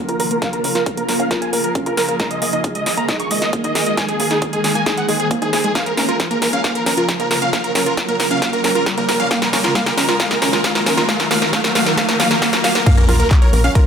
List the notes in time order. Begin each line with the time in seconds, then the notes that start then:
Already playing: C#3 F3 A#3 F4 A#4, riser
0.08 A#1 F4 A#4, closed hi-hat
0.20 A#1 A#4, open hi-hat
0.31 A#3 A#4, closed hi-hat
0.42 A#3 G#4 F5, kick, snare, closed hi-hat
0.53 A#4, closed hi-hat
0.64 A#1 C#4 A#4, open hi-hat
0.75 F4 A#4, snare, closed hi-hat
0.86 A#4, kick, closed hi-hat
0.97 A#3 A#4, closed hi-hat
1.09 A#1 A#4, snare, open hi-hat
1.20 C#4 F5, closed hi-hat
1.31 F4 A#4, kick, snare, closed hi-hat
1.42 A#4 G#5, closed hi-hat
1.53 A#1 A#3 A#4, open hi-hat
1.64 A#4, closed hi-hat
1.75 C#4, kick, closed hi-hat
1.86 A#1 F4 A#4, closed hi-hat
1.97 A#1 A#4, snare, open hi-hat
2.08 A#3 A#4, closed hi-hat
2.20 D#3 G#3 A#4 A#5, kick, snare, closed hi-hat
2.31 D#5, closed hi-hat
2.42 G#1 A#3 D#5, open hi-hat
2.53 D#4 D#5, closed hi-hat
2.64 G#4, kick, closed hi-hat
2.75 G#3 D#5, closed hi-hat
2.86 G#1 D#5, snare, open hi-hat
2.97 A#3 A#5, closed hi-hat
3.09 D#4 D#5, kick, snare, closed hi-hat
3.20 G#4 C#6, closed hi-hat
3.31 G#1 G#3 D#5, open hi-hat
3.42 D#5, snare, closed hi-hat
3.53 A#3, kick, closed hi-hat
3.64 G#1 D#4 D#5, closed hi-hat
3.75 G#1 G#4 D#5, snare, open hi-hat
3.86 G#3 D#5, closed hi-hat
3.97 G#3 C5 G#5, kick, snare, closed hi-hat
4.09 G#4, closed hi-hat
4.20 G#1 A#3 G#4, open hi-hat
4.31 D#4 G#4, snare, closed hi-hat
4.42 G#4, kick, closed hi-hat
4.53 G#3 G#4, closed hi-hat
4.64 G#1 G#4, snare, open hi-hat
4.75 A#3 G#5, closed hi-hat
4.86 D#4 G#4, kick, snare, closed hi-hat
4.97 G#4 F#5, closed hi-hat
5.08 G#1 G#3 G#4, open hi-hat
5.20 G#4, closed hi-hat
5.31 A#3, kick, closed hi-hat
5.42 G#1 D#4 G#4, closed hi-hat
5.53 G#1 G#4, snare, open hi-hat
5.64 G#3 G#4, closed hi-hat
5.75 C#3 F3 A#3 F4 A#4 F5, kick, snare, closed hi-hat
5.86 A#4, closed hi-hat
5.97 A#1 C#4 A#4, snare, open hi-hat
6.08 F4 A#4, closed hi-hat
6.20 A#4, kick, snare, closed hi-hat
6.31 A#3 A#4, closed hi-hat
6.42 A#1 A#4, snare, open hi-hat
6.53 C#4 F5, closed hi-hat
6.64 A#3 F5, kick, snare, closed hi-hat
6.75 A#4, closed hi-hat
6.86 A#1 C#4 A#4, snare, open hi-hat
6.97 F4 A#4, closed hi-hat
7.09 A#4, kick, snare, closed hi-hat
7.20 A#1 A#3 A#4, closed hi-hat
7.31 A#1 A#4, snare, open hi-hat
7.42 C#4 F5, closed hi-hat
7.53 A#3 F5, kick, snare, closed hi-hat
7.64 A#4, closed hi-hat
7.75 A#1 C#4 A#4, snare, open hi-hat
7.86 F4 A#4, closed hi-hat
7.97 A#4, kick, snare, closed hi-hat
8.09 A#3 A#4, closed hi-hat
8.20 A#1 A#4, snare, open hi-hat
8.31 C#4 F5, closed hi-hat
8.42 A#3, kick, snare, closed hi-hat
8.53 A#4, closed hi-hat
8.64 A#1 C#4 A#4, snare, open hi-hat
8.75 F4 A#4, closed hi-hat
8.86 A#4, kick, snare, closed hi-hat
8.97 A#1 A#3 A#4, closed hi-hat
9.09 A#1 A#4, snare, open hi-hat
9.20 C#4 F5, closed hi-hat
9.31 D#3 F#3 A#3 F#4 F5, kick, snare, closed hi-hat
9.42 A#4, snare, closed hi-hat
9.53 D#2 C#4 A#4, snare, open hi-hat
9.64 F4 A#4, snare, closed hi-hat
9.75 A#3 F5, kick, snare, closed hi-hat
9.86 A#4, snare, closed hi-hat
9.97 D#2 C#4 A#4, snare, open hi-hat
10.08 F4 A#4, snare, closed hi-hat
10.20 A#3 F5, kick, snare, closed hi-hat
10.31 A#4, snare, closed hi-hat
10.42 D#2 C#4 A#4, snare, open hi-hat
10.53 F4 A#4, snare, closed hi-hat
10.64 A#3 F5, kick, snare, closed hi-hat
10.75 D#2 A#4, snare, closed hi-hat
10.86 D#2 C#4 A#4, snare, open hi-hat
10.97 F4 A#4, snare, closed hi-hat
11.09 A#3 F5, kick, snare, closed hi-hat
11.20 A#4, snare, closed hi-hat
11.31 D#2 A#3 F5, snare, open hi-hat
11.42 A#4, snare
11.53 A#3 F5, kick, snare, closed hi-hat
11.64 A#4, snare, closed hi-hat
11.75 D#2 A#3 F5, snare, open hi-hat
11.86 A#4, snare, closed hi-hat
11.97 A#3 F5, kick, snare, closed hi-hat
12.09 A#4, snare, closed hi-hat
12.20 D#2 A#3 F5, snare, open hi-hat
12.31 A#4, snare, closed hi-hat
12.42 A#3 F5, kick, snare, open hi-hat
12.53 D#2 A#4, snare, closed hi-hat
12.64 D#2 A#3 F5, snare, open hi-hat
12.75 A#4, snare, closed hi-hat
12.86 C#3 F3 A#3 F4 A#4 F5, kick, closed hi-hat, crash, sub drop
12.97 C#4 A#4, cross-stick, closed hi-hat
13.09 A#1 F4 A#4, open hi-hat
13.20 A#4, closed hi-hat
13.31 kick, clap, closed hi-hat
13.42 A#4 C#5, closed hi-hat
13.53 A#1 A#3 A#4, open hi-hat
13.64 C#4 F5, closed hi-hat
13.75 F4 A#4, kick, closed hi-hat